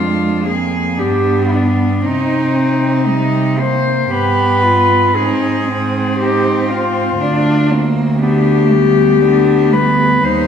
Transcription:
Already playing: F2 G#3 D4 F4
0.45 A#3 C4 G#4
0.99 G2 B3 D4 G4
1.53 B3 D4
2.05 C3 C4 D#4
2.55 C4
3.06 G3 D#4
3.59 A#3 C4 C5
4.10 G2 B3 G4 B4
4.63 F4
5.16 G#2 C4 D#4 G#4
5.68 C4
6.19 D#4 G4
6.70 C4 F4
7.20 D2 D4
7.71 A#3 C4
8.22 B3 D4 G4
8.72 G3 B3
9.21 B3 D4
9.73 G3 B3 B4
10.24 D#2 G3 D#4 C5

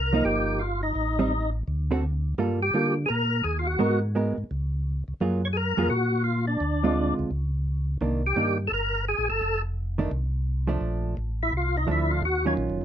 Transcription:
Already playing: C2 A#4
0.13 F3 A#3 D#4
0.25 G1 G4
0.59 F4
0.83 D#4
0.95 A1
1.19 G3 C4 D#4
1.68 D2
1.91 D3 C4 F#4 A4
2.38 G2 G3 A#3 F4 A4
2.62 G4
2.74 D3 G3 A#3 F4 A4
3.06 G#4 A#4
3.10 A#2
3.43 D#2 G#4
3.59 F4
3.67 F#4
3.79 G#2 G#3 B3 F#4 A#4
4.15 G#3 B3 F#4 A#4
4.38 G#2
4.51 C#2
5.08 C#2
5.20 F#2 F#3 A#3 F4 G#4
5.45 C#5
5.53 G#4
5.57 A#4
5.77 F2 F#3 A#3 F4 G#4
5.90 A#2 F#4
6.24 F4
6.47 D4
6.60 D2
6.83 D3 G#3 C4 F4
7.19 D2
7.31 C#2
8.01 C2 D#3 A#3 D4
8.26 G4
8.36 G2 D#3 A#3 D4
8.67 G1 A4
8.73 A#4
9.08 G#4
9.19 A#1
9.30 G1 A4
9.41 F1
9.98 D#3 A3 D4
10.11 C2
10.67 F3 A3 D4
10.81 A#1
11.17 A1
11.43 E4
11.53 C2
11.57 F4
11.77 D#4
11.87 D2 F3 A3 D4
11.91 E4
12.11 F4
12.22 D#2 F#4
12.45 D#3 F#3 C#4 F4
12.57 A#1
12.70 F#1
12.81 D#2

